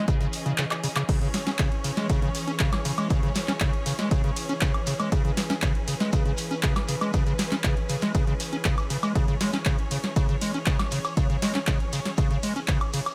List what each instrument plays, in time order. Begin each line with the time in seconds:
Already playing: string section E3 C#4 G#4 D#5
0.08 acid bass C#3, kick, closed hi-hat, shekere
0.20 acid bass C#3, closed hi-hat, shekere
0.33 open hi-hat, shekere
0.46 acid bass C#3, closed hi-hat, shekere
0.58 acid bass C#3, clap, closed hi-hat, shekere
0.71 clap, closed hi-hat, high woodblock, shekere
0.83 acid bass C#3, open hi-hat, shekere
0.96 acid bass C#3, clap, closed hi-hat, high woodblock, shekere
1.09 acid bass C#3, string section C#5, kick, closed hi-hat, crash, ride, shekere
1.21 acid bass C#3, closed hi-hat
1.34 snare, open hi-hat, ride, shekere
1.47 acid bass C#4, snare, closed hi-hat, shekere
1.59 acid bass C#3, kick, clap, closed hi-hat, ride, shekere
1.72 closed hi-hat
1.84 acid bass C#3, open hi-hat, ride, shekere
1.97 acid bass G#3, snare, closed hi-hat, shekere
2.09 acid bass C#3, kick, closed hi-hat, ride, shekere
2.22 acid bass C#3, closed hi-hat
2.35 open hi-hat, ride, shekere
2.47 acid bass C#4, closed hi-hat, shekere
2.59 acid bass C#3, kick, clap, closed hi-hat, ride, shekere
2.73 snare, closed hi-hat, high woodblock
2.85 acid bass C#3, open hi-hat, ride, shekere
2.97 acid bass G#3, closed hi-hat, high woodblock, shekere
3.10 acid bass C#3, kick, closed hi-hat, ride, shekere
3.23 acid bass C#3, closed hi-hat
3.35 snare, open hi-hat, ride, shekere
3.48 acid bass C#4, snare, clap, closed hi-hat, shekere
3.60 acid bass C#3, kick, clap, closed hi-hat, ride, shekere
3.73 closed hi-hat
3.86 acid bass C#3, open hi-hat, ride, shekere
3.98 acid bass G#3, snare, closed hi-hat, shekere
4.11 acid bass C#3, kick, closed hi-hat, ride, shekere
4.24 acid bass C#3, closed hi-hat
4.36 open hi-hat, ride, shekere
4.49 acid bass C#4, closed hi-hat, shekere
4.61 acid bass C#3, kick, clap, closed hi-hat, ride, shekere
4.74 closed hi-hat, high woodblock
4.86 acid bass C#3, open hi-hat, ride, shekere
4.99 acid bass G#3, closed hi-hat, high woodblock, shekere
5.12 acid bass C#3, string section B4, kick, closed hi-hat, ride, shekere
5.25 acid bass C#3, closed hi-hat
5.37 snare, open hi-hat, ride, shekere
5.50 acid bass C#4, snare, closed hi-hat, shekere
5.62 acid bass C#3, kick, clap, closed hi-hat, ride, shekere
5.75 closed hi-hat
5.88 acid bass C#3, open hi-hat, ride, shekere
6.00 acid bass G#3, snare, closed hi-hat, shekere
6.12 acid bass C#3, kick, closed hi-hat, ride, shekere
6.25 acid bass C#3, closed hi-hat
6.37 open hi-hat, ride, shekere
6.51 acid bass C#4, closed hi-hat, shekere
6.63 acid bass C#3, kick, clap, closed hi-hat, ride, shekere
6.76 snare, closed hi-hat, high woodblock
6.88 acid bass C#3, open hi-hat, ride, shekere
7.01 acid bass G#3, closed hi-hat, high woodblock, shekere
7.13 acid bass C#3, kick, closed hi-hat, ride, shekere
7.26 acid bass C#3, closed hi-hat, shekere
7.39 snare, open hi-hat, ride, shekere
7.51 acid bass C#4, snare, clap, closed hi-hat, shekere
7.64 acid bass C#3, kick, clap, closed hi-hat, ride, shekere
7.77 closed hi-hat
7.89 acid bass C#3, open hi-hat, ride, shekere
8.01 acid bass G#3, snare, closed hi-hat, shekere
8.14 acid bass C#3, kick, closed hi-hat, ride, shekere
8.27 acid bass C#3, closed hi-hat
8.40 open hi-hat, ride, shekere
8.53 acid bass C#4, closed hi-hat, shekere
8.65 acid bass C#3, kick, clap, closed hi-hat, ride, shekere
8.78 closed hi-hat, high woodblock, shekere
8.90 acid bass C#3, open hi-hat, ride, shekere
9.03 acid bass G#3, closed hi-hat, high woodblock, shekere
9.15 acid bass C#3, string section C#5, kick, closed hi-hat, ride, shekere
9.28 acid bass C#3, closed hi-hat
9.41 acid bass G#3, snare, open hi-hat, ride, shekere
9.53 acid bass C#4, snare, closed hi-hat, shekere
9.65 acid bass C#3, kick, clap, closed hi-hat, ride, shekere
9.79 closed hi-hat
9.91 acid bass C#3, open hi-hat, ride, shekere
10.04 snare, closed hi-hat, shekere
10.16 acid bass C#3, kick, closed hi-hat, ride, shekere
10.29 acid bass C#3, closed hi-hat
10.41 acid bass G#3, open hi-hat, ride, shekere
10.54 acid bass C#4, closed hi-hat, shekere
10.66 acid bass C#3, kick, clap, closed hi-hat, ride, shekere
10.79 snare, closed hi-hat, high woodblock
10.91 acid bass C#3, open hi-hat, ride, shekere
11.04 closed hi-hat, high woodblock, shekere
11.17 acid bass C#3, kick, closed hi-hat, ride, shekere
11.30 acid bass C#3, closed hi-hat
11.42 acid bass G#3, snare, open hi-hat, ride, shekere
11.54 acid bass C#4, snare, clap, closed hi-hat, shekere
11.67 acid bass C#3, kick, clap, closed hi-hat, ride, shekere
11.80 closed hi-hat
11.93 acid bass C#3, open hi-hat, ride, shekere
12.05 snare, closed hi-hat, shekere
12.17 acid bass C#3, kick, closed hi-hat, ride, shekere
12.31 acid bass C#3, closed hi-hat
12.43 acid bass G#3, open hi-hat, ride, shekere
12.56 acid bass C#4, closed hi-hat, shekere
12.68 acid bass C#3, kick, clap, closed hi-hat, ride, shekere
12.81 closed hi-hat, high woodblock
12.93 acid bass C#3, open hi-hat, ride, shekere
13.06 closed hi-hat, high woodblock, shekere